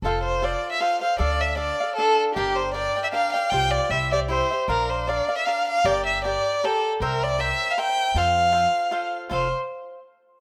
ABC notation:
X:1
M:3/4
L:1/16
Q:"Swing" 1/4=156
K:F
V:1 name="Violin"
A2 c2 d3 e f2 f2 | d2 e2 d4 A3 z | G2 c2 d3 e f2 f2 | g2 d2 e2 d2 c3 z |
B2 c2 d3 e f2 f2 | d2 e2 d4 A3 z | B2 d2 e3 f g4 | f8- f2 z2 |
c2 z8 z2 |]
V:2 name="Cavaquinho"
[FAcf]4 [FAcf]4 [FAcf]2 [Acf]2 | [DAdf]4 [DAdf]2 [Adf]2 [DAdf]4 | [DBdg]4 [DBdg]2 [Bdg]2 [DBdg]2 [Bdg]2 | [FGcf]4 [EGce]2 [Gce]2 [EGce]2 [Gce]2 |
[DBdf]4 [DBdf]2 [Bdf]2 [DBdf]4 | [GBdg]4 [GBdg]4 [GBdg]4 | [Bceg]4 [Bceg]4 [Bceg]4 | [FAcf]4 [FAcf]4 [FAcf]4 |
[FAcf]2 z8 z2 |]
V:3 name="Upright bass" clef=bass
F,,,8 z4 | D,,8 z4 | G,,,8 z4 | C,,4 C,,8 |
B,,,8 z4 | G,,,8 z4 | C,,8 z4 | F,,8 z4 |
F,,,2 z8 z2 |]